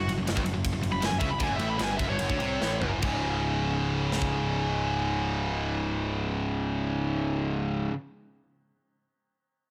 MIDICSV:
0, 0, Header, 1, 6, 480
1, 0, Start_track
1, 0, Tempo, 374298
1, 1798, Time_signature, 4, 2, 24, 8
1, 1798, Tempo, 400267
1, 3238, Tempo, 431034
1, 11146, End_track
2, 0, Start_track
2, 0, Title_t, "Lead electric guitar"
2, 0, Program_c, 0, 29
2, 0, Note_on_c, 0, 66, 101
2, 136, Note_off_c, 0, 66, 0
2, 1183, Note_on_c, 0, 83, 91
2, 1349, Note_off_c, 0, 83, 0
2, 1349, Note_on_c, 0, 80, 93
2, 1487, Note_off_c, 0, 80, 0
2, 1517, Note_on_c, 0, 76, 84
2, 1653, Note_off_c, 0, 76, 0
2, 1672, Note_on_c, 0, 83, 92
2, 1812, Note_off_c, 0, 83, 0
2, 1838, Note_on_c, 0, 80, 82
2, 1969, Note_off_c, 0, 80, 0
2, 1984, Note_on_c, 0, 76, 80
2, 2120, Note_off_c, 0, 76, 0
2, 2150, Note_on_c, 0, 83, 99
2, 2282, Note_off_c, 0, 83, 0
2, 2320, Note_on_c, 0, 80, 98
2, 2447, Note_off_c, 0, 80, 0
2, 2473, Note_on_c, 0, 76, 89
2, 2604, Note_off_c, 0, 76, 0
2, 2623, Note_on_c, 0, 73, 98
2, 3543, Note_off_c, 0, 73, 0
2, 11146, End_track
3, 0, Start_track
3, 0, Title_t, "Distorted electric guitar"
3, 0, Program_c, 1, 30
3, 102, Note_on_c, 1, 42, 73
3, 216, Note_off_c, 1, 42, 0
3, 231, Note_on_c, 1, 42, 71
3, 329, Note_off_c, 1, 42, 0
3, 344, Note_on_c, 1, 42, 76
3, 449, Note_off_c, 1, 42, 0
3, 455, Note_on_c, 1, 43, 92
3, 561, Note_off_c, 1, 43, 0
3, 567, Note_on_c, 1, 42, 78
3, 669, Note_off_c, 1, 42, 0
3, 685, Note_on_c, 1, 42, 72
3, 887, Note_off_c, 1, 42, 0
3, 929, Note_on_c, 1, 42, 74
3, 1041, Note_off_c, 1, 42, 0
3, 1056, Note_on_c, 1, 42, 65
3, 1149, Note_off_c, 1, 42, 0
3, 1164, Note_on_c, 1, 42, 66
3, 1269, Note_off_c, 1, 42, 0
3, 1285, Note_on_c, 1, 42, 98
3, 1401, Note_off_c, 1, 42, 0
3, 1416, Note_on_c, 1, 42, 75
3, 1535, Note_on_c, 1, 49, 95
3, 1545, Note_off_c, 1, 42, 0
3, 1659, Note_off_c, 1, 49, 0
3, 1664, Note_on_c, 1, 42, 64
3, 1780, Note_on_c, 1, 50, 96
3, 1792, Note_off_c, 1, 42, 0
3, 1892, Note_on_c, 1, 42, 99
3, 1898, Note_off_c, 1, 50, 0
3, 2003, Note_off_c, 1, 42, 0
3, 2008, Note_on_c, 1, 45, 89
3, 2243, Note_off_c, 1, 45, 0
3, 2248, Note_on_c, 1, 43, 100
3, 2479, Note_off_c, 1, 43, 0
3, 2484, Note_on_c, 1, 42, 92
3, 2600, Note_off_c, 1, 42, 0
3, 2604, Note_on_c, 1, 43, 96
3, 2728, Note_off_c, 1, 43, 0
3, 2744, Note_on_c, 1, 42, 85
3, 2857, Note_on_c, 1, 50, 102
3, 2859, Note_off_c, 1, 42, 0
3, 2969, Note_off_c, 1, 50, 0
3, 2974, Note_on_c, 1, 48, 87
3, 3223, Note_off_c, 1, 48, 0
3, 3224, Note_on_c, 1, 45, 94
3, 3456, Note_off_c, 1, 45, 0
3, 3460, Note_on_c, 1, 42, 84
3, 3680, Note_off_c, 1, 42, 0
3, 3685, Note_on_c, 1, 37, 79
3, 3712, Note_on_c, 1, 44, 89
3, 3734, Note_on_c, 1, 49, 104
3, 9129, Note_off_c, 1, 37, 0
3, 9157, Note_off_c, 1, 44, 0
3, 9179, Note_off_c, 1, 49, 0
3, 11146, End_track
4, 0, Start_track
4, 0, Title_t, "Distorted electric guitar"
4, 0, Program_c, 2, 30
4, 8, Note_on_c, 2, 42, 66
4, 101, Note_off_c, 2, 42, 0
4, 11146, End_track
5, 0, Start_track
5, 0, Title_t, "Picked electric bass"
5, 0, Program_c, 3, 34
5, 13, Note_on_c, 3, 30, 82
5, 115, Note_off_c, 3, 30, 0
5, 126, Note_on_c, 3, 30, 75
5, 231, Note_off_c, 3, 30, 0
5, 256, Note_on_c, 3, 30, 81
5, 355, Note_off_c, 3, 30, 0
5, 374, Note_on_c, 3, 30, 77
5, 468, Note_off_c, 3, 30, 0
5, 476, Note_on_c, 3, 31, 93
5, 583, Note_off_c, 3, 31, 0
5, 594, Note_on_c, 3, 30, 82
5, 702, Note_off_c, 3, 30, 0
5, 718, Note_on_c, 3, 30, 80
5, 935, Note_off_c, 3, 30, 0
5, 952, Note_on_c, 3, 30, 72
5, 1061, Note_off_c, 3, 30, 0
5, 1077, Note_on_c, 3, 30, 78
5, 1184, Note_off_c, 3, 30, 0
5, 1191, Note_on_c, 3, 30, 80
5, 1302, Note_off_c, 3, 30, 0
5, 1309, Note_on_c, 3, 30, 88
5, 1422, Note_off_c, 3, 30, 0
5, 1433, Note_on_c, 3, 30, 71
5, 1540, Note_off_c, 3, 30, 0
5, 1547, Note_on_c, 3, 37, 89
5, 1664, Note_off_c, 3, 37, 0
5, 1678, Note_on_c, 3, 30, 71
5, 1787, Note_off_c, 3, 30, 0
5, 1795, Note_on_c, 3, 38, 88
5, 1904, Note_off_c, 3, 38, 0
5, 1909, Note_on_c, 3, 30, 93
5, 2020, Note_off_c, 3, 30, 0
5, 2032, Note_on_c, 3, 33, 92
5, 2250, Note_off_c, 3, 33, 0
5, 2269, Note_on_c, 3, 31, 80
5, 2489, Note_off_c, 3, 31, 0
5, 2512, Note_on_c, 3, 30, 92
5, 2620, Note_off_c, 3, 30, 0
5, 2632, Note_on_c, 3, 31, 95
5, 2741, Note_off_c, 3, 31, 0
5, 2761, Note_on_c, 3, 30, 91
5, 2864, Note_off_c, 3, 30, 0
5, 2872, Note_on_c, 3, 38, 86
5, 2984, Note_off_c, 3, 38, 0
5, 2992, Note_on_c, 3, 36, 97
5, 3222, Note_off_c, 3, 36, 0
5, 3245, Note_on_c, 3, 33, 95
5, 3460, Note_off_c, 3, 33, 0
5, 3470, Note_on_c, 3, 30, 90
5, 3693, Note_off_c, 3, 30, 0
5, 3710, Note_on_c, 3, 25, 80
5, 9110, Note_off_c, 3, 25, 0
5, 11146, End_track
6, 0, Start_track
6, 0, Title_t, "Drums"
6, 114, Note_on_c, 9, 51, 68
6, 243, Note_off_c, 9, 51, 0
6, 351, Note_on_c, 9, 51, 95
6, 365, Note_on_c, 9, 38, 102
6, 473, Note_on_c, 9, 36, 93
6, 479, Note_off_c, 9, 51, 0
6, 493, Note_off_c, 9, 38, 0
6, 587, Note_on_c, 9, 51, 72
6, 601, Note_off_c, 9, 36, 0
6, 715, Note_off_c, 9, 51, 0
6, 828, Note_on_c, 9, 36, 106
6, 828, Note_on_c, 9, 51, 101
6, 956, Note_off_c, 9, 36, 0
6, 957, Note_off_c, 9, 51, 0
6, 1068, Note_on_c, 9, 51, 59
6, 1197, Note_off_c, 9, 51, 0
6, 1310, Note_on_c, 9, 51, 87
6, 1324, Note_on_c, 9, 38, 94
6, 1438, Note_off_c, 9, 51, 0
6, 1452, Note_off_c, 9, 38, 0
6, 1545, Note_on_c, 9, 51, 65
6, 1552, Note_on_c, 9, 36, 90
6, 1673, Note_off_c, 9, 51, 0
6, 1680, Note_off_c, 9, 36, 0
6, 1793, Note_on_c, 9, 51, 81
6, 1799, Note_on_c, 9, 36, 94
6, 1913, Note_off_c, 9, 51, 0
6, 1919, Note_off_c, 9, 36, 0
6, 2029, Note_on_c, 9, 51, 61
6, 2149, Note_off_c, 9, 51, 0
6, 2268, Note_on_c, 9, 51, 88
6, 2281, Note_on_c, 9, 38, 102
6, 2388, Note_off_c, 9, 51, 0
6, 2401, Note_off_c, 9, 38, 0
6, 2508, Note_on_c, 9, 36, 104
6, 2511, Note_on_c, 9, 51, 65
6, 2628, Note_off_c, 9, 36, 0
6, 2631, Note_off_c, 9, 51, 0
6, 2742, Note_on_c, 9, 51, 85
6, 2862, Note_off_c, 9, 51, 0
6, 2870, Note_on_c, 9, 36, 89
6, 2990, Note_off_c, 9, 36, 0
6, 2994, Note_on_c, 9, 51, 55
6, 3114, Note_off_c, 9, 51, 0
6, 3256, Note_on_c, 9, 38, 57
6, 3367, Note_off_c, 9, 38, 0
6, 3475, Note_on_c, 9, 43, 74
6, 3587, Note_off_c, 9, 43, 0
6, 3705, Note_on_c, 9, 49, 70
6, 3711, Note_on_c, 9, 36, 97
6, 3816, Note_off_c, 9, 49, 0
6, 3822, Note_off_c, 9, 36, 0
6, 4931, Note_on_c, 9, 38, 51
6, 5035, Note_on_c, 9, 36, 67
6, 5043, Note_off_c, 9, 38, 0
6, 5147, Note_off_c, 9, 36, 0
6, 11146, End_track
0, 0, End_of_file